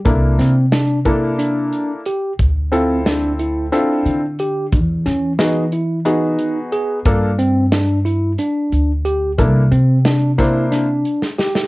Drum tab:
HH |x-x-x-x-x-x-x-|x-x-x-x-x-x-x-|x-x-x-x-x-x-x-|x-x-x-x-x-x-x-|
SD |--o-o---------|----o---------|--o-o---------|----o---------|
BD |o-----o-------|o-------------|o-------------|o-------------|

HH |x-x-x-x-x-x---|
SD |----o-o-o--ooo|
BD |o-----o-------|